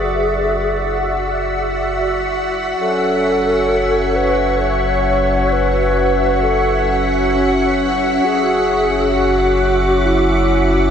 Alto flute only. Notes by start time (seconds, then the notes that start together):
Already playing: G#4
2.81 A4
4.16 B4
4.60 C#5
5.52 B4
6.42 A4
7.34 C#4
8.25 G#4
9.14 F#4
10.06 E4